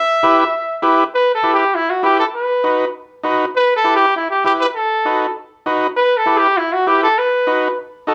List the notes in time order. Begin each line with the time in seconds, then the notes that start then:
Already playing: E5
0.23 E4 G4 B4
0.82 E4 G4 B4
1.14 B4
1.35 A4
1.43 E4 G4 B4
1.54 G4
1.75 E4
1.90 F#4
2.03 E4 G4 B4
2.19 A4
2.35 B4
2.64 D#4 F#4 B4
3.23 D#4 F#4 B4
3.56 B4
3.76 A4
3.84 E4 G4 B4
3.96 G4
4.16 E4
4.30 G4
4.44 E4 G4 B4
4.60 B4
4.75 A4
5.05 D#4 F#4 B4
5.66 D#4 F#4 B4
5.96 B4
6.17 A4
6.26 E4 G4 B4
6.37 G4
6.57 E4
6.72 F#4
6.87 E4 G4 B4
7.03 A4
7.18 B4
7.47 D#4 F#4 B4
8.07 D#4 F#4 A4